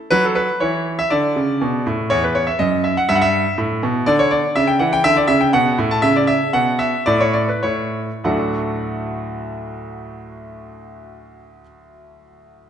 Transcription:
0.10 F#3 B4
0.25 A4
0.35 B4
0.60 E3 C#5
0.99 E5
1.10 D3 D5
1.36 C#3
1.61 B2
1.86 A2
2.10 E2 C#5
2.24 B4
2.35 C#5
2.47 E5
2.59 F#2 D#5
2.84 E5
2.97 F#5
3.09 G2 E5
3.15 F#5
3.21 E5
3.58 A2
3.83 B2
4.06 D3 D5
4.19 C#5
4.31 D5
4.56 C#3 E5
4.67 G5
4.79 E3 F#5
4.93 G5
5.04 D3 E5
5.16 D5
5.28 C#3 E5
5.41 G5
5.53 B2 F#5
5.78 A2
5.91 A5
6.02 C#3 E5
6.16 D5
6.27 E5
6.53 B2 F#5
6.79 E5
7.06 A2 D5
7.20 C#5
7.33 D5
7.48 B4
7.63 A2 C#5
8.24 D2 A2 F#3 A3 D4 F#4 F#5

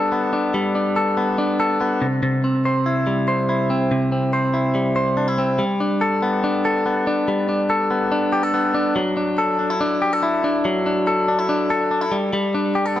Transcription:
Already playing: G3 B3 D4 A4
0.12 B3
0.33 D4
0.54 G3
0.75 D4
0.96 A4
1.17 B3
1.38 D4
1.60 A4
1.81 B3
2.02 C3
2.23 C3
2.44 C4
2.65 C5
2.86 E4
3.07 G3
3.28 C5
3.49 E4
3.70 C4
3.91 C3
4.12 C4
4.33 C5
4.54 E4
4.75 G3
4.96 C5
5.17 D4
5.28 E4
5.38 C4
5.59 G3
5.80 D4
6.01 A4
6.22 B3
6.44 D4
6.65 A4
6.86 B3
7.07 D4
7.28 G3
7.49 D4
7.70 A4
7.91 B3
8.12 D4
8.32 G4
8.43 A4
8.54 B3
8.74 D4
8.96 F#3
9.17 D4
9.38 A4
9.59 D4
9.70 E4
9.81 D4
10.02 G4
10.13 A4
10.23 E4
10.44 D4
10.65 F#3
10.86 D4
11.07 A4
11.28 D4
11.39 E4
11.49 D4
11.70 A4
11.91 D4
12.01 E4
12.12 G3
12.33 G3
12.54 D4
12.75 G4
12.86 A4
12.96 B3

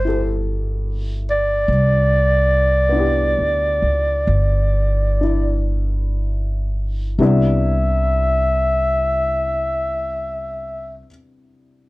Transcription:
Already playing: G1 B2 D4 C5
0.05 E4 G4 A4
1.30 D5
1.68 C2
2.89 B3 D4
2.96 E4 G4
3.38 D2
3.82 C#2
4.27 G1
5.21 D4 E4
7.18 C2 C3 G3 B3 D4 E4 E5

